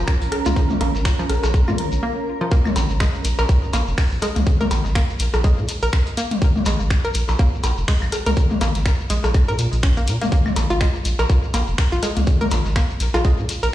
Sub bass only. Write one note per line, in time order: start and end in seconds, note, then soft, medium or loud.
0.22 0.28 A#1 medium
0.46 0.52 C#2 medium
0.81 0.89 A#1 loud
0.95 1.09 G#1 medium
1.30 1.38 A#1 loud
1.43 1.69 A#1 medium
1.68 1.74 A#2 medium
1.92 1.99 A#1 medium
2.76 2.85 A#1 loud
2.90 3.04 G#1 medium
3.25 3.33 A#1 medium
3.39 3.45 A#1 medium
3.49 3.58 A#1 medium
3.73 3.82 A#1 loud
3.87 3.94 F1 loud
4.12 4.18 A#1 medium
4.36 4.43 C#2 loud
4.71 4.80 A#1 loud
4.85 4.99 G#1 medium
5.20 5.29 A#1 loud
5.34 5.60 A#1 medium
5.58 5.65 A#2 medium
5.82 5.89 A#1 medium
6.66 6.75 A#1 loud
6.80 6.94 G#1 medium
7.15 7.24 A#1 loud
7.29 7.35 A#1 medium
7.39 7.48 A#1 medium
7.64 7.72 A#1 loud
7.78 7.84 F1 loud
8.02 8.09 A#1 medium
8.26 8.33 C#2 medium
8.61 8.70 A#1 loud
8.75 8.89 G#1 medium
9.10 9.19 A#1 loud
9.24 9.50 A#1 medium
9.48 9.55 A#2 medium
9.59 9.68 A#2 loud
9.73 10.09 A#1 medium
10.07 10.16 A#2 medium
10.56 10.65 A#1 loud
10.70 10.84 G#1 medium
11.05 11.14 A#1 medium
11.19 11.26 A#1 medium
11.30 11.38 A#1 medium
11.54 11.63 A#1 loud
11.68 11.74 F1 loud
11.92 11.99 A#1 medium
12.17 12.23 C#2 medium
12.52 12.60 A#1 loud
12.66 12.79 G#1 medium
13.00 13.09 A#1 loud
13.14 13.40 A#1 medium
13.39 13.45 A#2 medium
13.63 13.70 A#1 medium